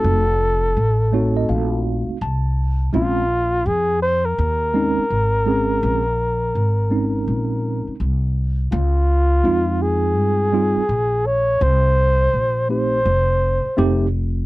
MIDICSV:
0, 0, Header, 1, 5, 480
1, 0, Start_track
1, 0, Tempo, 722892
1, 30, Time_signature, 4, 2, 24, 8
1, 9601, End_track
2, 0, Start_track
2, 0, Title_t, "Flugelhorn"
2, 0, Program_c, 0, 56
2, 0, Note_on_c, 0, 69, 86
2, 1231, Note_off_c, 0, 69, 0
2, 1956, Note_on_c, 0, 65, 98
2, 2432, Note_on_c, 0, 68, 98
2, 2442, Note_off_c, 0, 65, 0
2, 2668, Note_off_c, 0, 68, 0
2, 2672, Note_on_c, 0, 72, 103
2, 2825, Note_on_c, 0, 70, 85
2, 2835, Note_off_c, 0, 72, 0
2, 5310, Note_off_c, 0, 70, 0
2, 5795, Note_on_c, 0, 65, 87
2, 6521, Note_on_c, 0, 68, 87
2, 6531, Note_off_c, 0, 65, 0
2, 7478, Note_on_c, 0, 73, 86
2, 7488, Note_off_c, 0, 68, 0
2, 7718, Note_on_c, 0, 72, 99
2, 7728, Note_off_c, 0, 73, 0
2, 8434, Note_off_c, 0, 72, 0
2, 8437, Note_on_c, 0, 72, 96
2, 9367, Note_off_c, 0, 72, 0
2, 9601, End_track
3, 0, Start_track
3, 0, Title_t, "Tine electric piano"
3, 0, Program_c, 1, 4
3, 0, Note_on_c, 1, 57, 62
3, 0, Note_on_c, 1, 60, 63
3, 0, Note_on_c, 1, 63, 67
3, 0, Note_on_c, 1, 66, 65
3, 150, Note_off_c, 1, 57, 0
3, 153, Note_off_c, 1, 60, 0
3, 155, Note_off_c, 1, 63, 0
3, 157, Note_off_c, 1, 66, 0
3, 747, Note_on_c, 1, 57, 70
3, 752, Note_on_c, 1, 60, 69
3, 753, Note_on_c, 1, 73, 57
3, 756, Note_on_c, 1, 63, 67
3, 759, Note_on_c, 1, 66, 77
3, 895, Note_off_c, 1, 73, 0
3, 908, Note_on_c, 1, 75, 66
3, 985, Note_off_c, 1, 75, 0
3, 991, Note_on_c, 1, 77, 67
3, 1434, Note_off_c, 1, 57, 0
3, 1437, Note_off_c, 1, 60, 0
3, 1439, Note_off_c, 1, 63, 0
3, 1440, Note_off_c, 1, 66, 0
3, 1444, Note_off_c, 1, 77, 0
3, 1474, Note_on_c, 1, 81, 67
3, 1925, Note_off_c, 1, 81, 0
3, 1944, Note_on_c, 1, 56, 66
3, 1949, Note_on_c, 1, 60, 64
3, 1953, Note_on_c, 1, 61, 65
3, 1958, Note_on_c, 1, 65, 77
3, 2136, Note_off_c, 1, 56, 0
3, 2138, Note_off_c, 1, 60, 0
3, 2140, Note_off_c, 1, 61, 0
3, 2142, Note_off_c, 1, 65, 0
3, 3146, Note_on_c, 1, 56, 82
3, 3150, Note_on_c, 1, 60, 63
3, 3155, Note_on_c, 1, 61, 70
3, 3157, Note_on_c, 1, 63, 82
3, 3337, Note_off_c, 1, 56, 0
3, 3339, Note_off_c, 1, 60, 0
3, 3341, Note_off_c, 1, 61, 0
3, 3342, Note_off_c, 1, 63, 0
3, 3624, Note_on_c, 1, 56, 66
3, 3627, Note_on_c, 1, 60, 70
3, 3633, Note_on_c, 1, 61, 69
3, 3635, Note_on_c, 1, 68, 78
3, 3991, Note_off_c, 1, 56, 0
3, 3992, Note_off_c, 1, 60, 0
3, 3995, Note_off_c, 1, 61, 0
3, 3996, Note_off_c, 1, 68, 0
3, 4582, Note_on_c, 1, 56, 53
3, 4588, Note_on_c, 1, 60, 59
3, 4592, Note_on_c, 1, 61, 54
3, 4596, Note_on_c, 1, 63, 66
3, 5272, Note_off_c, 1, 56, 0
3, 5275, Note_off_c, 1, 60, 0
3, 5277, Note_off_c, 1, 61, 0
3, 5279, Note_off_c, 1, 63, 0
3, 6265, Note_on_c, 1, 56, 64
3, 6268, Note_on_c, 1, 60, 62
3, 6274, Note_on_c, 1, 63, 69
3, 6277, Note_on_c, 1, 65, 82
3, 6953, Note_off_c, 1, 56, 0
3, 6955, Note_off_c, 1, 60, 0
3, 6958, Note_off_c, 1, 63, 0
3, 6959, Note_off_c, 1, 65, 0
3, 6987, Note_on_c, 1, 55, 72
3, 6990, Note_on_c, 1, 60, 62
3, 6996, Note_on_c, 1, 63, 60
3, 6999, Note_on_c, 1, 65, 77
3, 7177, Note_off_c, 1, 55, 0
3, 7179, Note_off_c, 1, 60, 0
3, 7181, Note_off_c, 1, 63, 0
3, 7183, Note_off_c, 1, 65, 0
3, 8425, Note_on_c, 1, 57, 56
3, 8430, Note_on_c, 1, 60, 48
3, 8434, Note_on_c, 1, 63, 50
3, 8438, Note_on_c, 1, 67, 59
3, 8616, Note_off_c, 1, 57, 0
3, 8619, Note_off_c, 1, 60, 0
3, 8621, Note_off_c, 1, 63, 0
3, 8622, Note_off_c, 1, 67, 0
3, 9142, Note_on_c, 1, 57, 89
3, 9147, Note_on_c, 1, 60, 84
3, 9150, Note_on_c, 1, 63, 77
3, 9154, Note_on_c, 1, 67, 101
3, 9335, Note_off_c, 1, 57, 0
3, 9337, Note_off_c, 1, 60, 0
3, 9339, Note_off_c, 1, 63, 0
3, 9341, Note_off_c, 1, 67, 0
3, 9601, End_track
4, 0, Start_track
4, 0, Title_t, "Upright bass"
4, 0, Program_c, 2, 32
4, 29, Note_on_c, 2, 29, 104
4, 485, Note_off_c, 2, 29, 0
4, 509, Note_on_c, 2, 33, 92
4, 965, Note_off_c, 2, 33, 0
4, 988, Note_on_c, 2, 34, 91
4, 1364, Note_off_c, 2, 34, 0
4, 1469, Note_on_c, 2, 36, 100
4, 1926, Note_off_c, 2, 36, 0
4, 1950, Note_on_c, 2, 34, 96
4, 2406, Note_off_c, 2, 34, 0
4, 2428, Note_on_c, 2, 41, 91
4, 2885, Note_off_c, 2, 41, 0
4, 2911, Note_on_c, 2, 39, 99
4, 3285, Note_off_c, 2, 39, 0
4, 3389, Note_on_c, 2, 32, 91
4, 3845, Note_off_c, 2, 32, 0
4, 3870, Note_on_c, 2, 34, 99
4, 4326, Note_off_c, 2, 34, 0
4, 4350, Note_on_c, 2, 32, 83
4, 4806, Note_off_c, 2, 32, 0
4, 4831, Note_on_c, 2, 34, 85
4, 5205, Note_off_c, 2, 34, 0
4, 5312, Note_on_c, 2, 36, 88
4, 5767, Note_off_c, 2, 36, 0
4, 5790, Note_on_c, 2, 37, 119
4, 6246, Note_off_c, 2, 37, 0
4, 6270, Note_on_c, 2, 41, 91
4, 6750, Note_off_c, 2, 41, 0
4, 6750, Note_on_c, 2, 43, 89
4, 7125, Note_off_c, 2, 43, 0
4, 7230, Note_on_c, 2, 34, 94
4, 7686, Note_off_c, 2, 34, 0
4, 7709, Note_on_c, 2, 36, 109
4, 8165, Note_off_c, 2, 36, 0
4, 8190, Note_on_c, 2, 34, 80
4, 8646, Note_off_c, 2, 34, 0
4, 8668, Note_on_c, 2, 29, 98
4, 9044, Note_off_c, 2, 29, 0
4, 9150, Note_on_c, 2, 29, 105
4, 9601, Note_off_c, 2, 29, 0
4, 9601, End_track
5, 0, Start_track
5, 0, Title_t, "Muted upright bass strokes"
5, 1386, Note_on_c, 9, 29, 41
5, 1452, Note_off_c, 9, 29, 0
5, 3304, Note_on_c, 9, 29, 43
5, 3370, Note_off_c, 9, 29, 0
5, 5228, Note_on_c, 9, 29, 41
5, 5294, Note_off_c, 9, 29, 0
5, 7145, Note_on_c, 9, 29, 42
5, 7211, Note_off_c, 9, 29, 0
5, 9064, Note_on_c, 9, 29, 41
5, 9130, Note_off_c, 9, 29, 0
5, 9601, End_track
0, 0, End_of_file